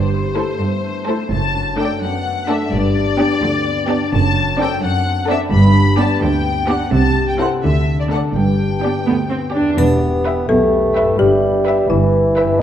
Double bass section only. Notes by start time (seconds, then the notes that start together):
Already playing: G1
1.31 F#1
2.71 G1
4.12 F#1
5.51 G1
6.92 C2
7.63 D2
8.34 G1
9.78 E1
10.48 B1
11.18 G1
11.89 G1